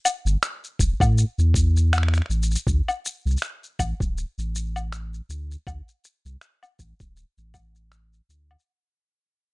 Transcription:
0.05 low woodblock, shaker
0.25 G1, shaker
0.43 finger snap, shaker
0.64 shaker
0.79 E1, kick, shaker
1.00 A2, kick, low woodblock, shaker
1.18 shaker
1.38 E2, shaker
1.54 kick, shaker
1.77 shaker
1.93 finger snap, low woodblock, shaker
1.98 finger snap
2.03 finger snap
2.08 finger snap
2.14 finger snap, shaker
2.18 finger snap
2.22 finger snap
2.26 A1, finger snap
2.30 shaker
2.43 shaker
2.51 shaker
2.55 shaker
2.66 D2, kick, shaker
2.88 low woodblock, shaker
3.05 shaker
3.25 C2, shaker
3.30 shaker
3.37 shaker
3.42 finger snap, shaker
3.63 shaker
3.79 A1, kick, low woodblock, shaker
4.00 D1, kick, shaker
4.18 shaker
4.38 A1, shaker
4.55 shaker
4.76 low woodblock, shaker
4.92 finger snap, shaker
5.14 shaker
5.29 D2, shaker
5.51 shaker
5.67 D2, kick, low woodblock, shaker
5.88 shaker
6.04 shaker
6.25 C2, shaker
6.41 finger snap, shaker
6.63 low woodblock, shaker
6.79 A1, kick, shaker
7.00 D1, kick, shaker
7.16 shaker
7.38 A1, shaker
7.54 kick, low woodblock, shaker
7.75 shaker
7.92 finger snap, shaker
8.13 shaker
8.29 D2, shaker
8.51 low woodblock
8.59 shaker

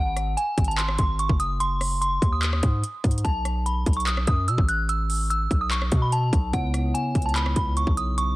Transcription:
Already playing: G#1 F#5
0.16 cross-stick, closed hi-hat
0.37 G#5, closed hi-hat
0.58 G#1, kick, closed hi-hat
0.64 A5, closed hi-hat
0.71 closed hi-hat
0.78 C6, clap, closed hi-hat
0.89 cross-stick
0.98 G#1 C6, kick, closed hi-hat
1.19 C#6, closed hi-hat
1.29 F#1, kick
1.40 D#6, closed hi-hat
1.60 C6, closed hi-hat
1.81 cross-stick, open hi-hat
2.01 C6, closed hi-hat
2.22 D#2, kick, closed hi-hat
2.32 D#6
2.42 clap, closed hi-hat
2.53 cross-stick
2.63 G#2, kick, closed hi-hat
2.84 closed hi-hat
3.04 G#2, kick, closed hi-hat
3.11 closed hi-hat
3.18 closed hi-hat
3.25 B1 A5, kick, closed hi-hat
3.45 cross-stick, closed hi-hat
3.66 B5, closed hi-hat
3.86 B1, kick, closed hi-hat
3.93 C#6, closed hi-hat
4.00 closed hi-hat
4.07 D#6, clap, closed hi-hat
4.17 cross-stick
4.27 F#2 D#6, kick, closed hi-hat
4.48 B2 E6, closed hi-hat
4.58 A1, kick
4.69 F#6, closed hi-hat
4.89 E6, closed hi-hat
5.10 open hi-hat
5.30 E6, closed hi-hat
5.51 B1, kick, closed hi-hat
5.61 D#6
5.71 C#6, clap, closed hi-hat
5.82 cross-stick
5.92 B2, kick, closed hi-hat
6.02 B5
6.12 A5, closed hi-hat
6.33 B1, kick, closed hi-hat
6.52 C#2 C#3 B3 E4 C#5 F#5, kick, closed hi-hat
6.74 cross-stick, closed hi-hat
6.94 G#5, closed hi-hat
7.15 C#2, kick, closed hi-hat
7.22 A5, closed hi-hat
7.29 closed hi-hat
7.35 B5, clap, closed hi-hat
7.46 cross-stick
7.56 C#2 B5, kick, closed hi-hat
7.77 C#6, closed hi-hat
7.87 B1, kick
7.97 D#6, closed hi-hat
8.18 C#6, closed hi-hat

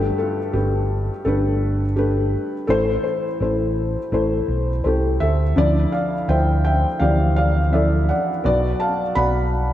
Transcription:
Already playing: G1 G2 A3 G4 B4
0.18 F4 A4
0.53 G1 A3 D4 G4 B4
1.25 G1 A3 D4 G4 A4 B4
1.96 A3 D4 G4 B4
2.67 A1 A2 A3 E4 A4 C5
3.04 A4 C5
3.40 A1 A3 E4 C5
4.12 A1 A3 E4 C5
4.48 B1
4.84 C2 A3 E4 G4 A4 C5
5.20 D2 A4 E5
5.56 D2 D3 F3 E4 D5
5.92 D5 F5
6.28 D2 F3 E4 C5 E5 G5
6.65 E5 G5
7.00 D2 E3 F3 G4 D5 F5
7.36 D5 F5
7.71 F3 E4 A4 D5 E5
8.09 D5 F#5
8.44 B1 B2 B3 F#4 D5
8.80 F5 A5
9.15 B1 B3 F#4 D5 F#5 B5

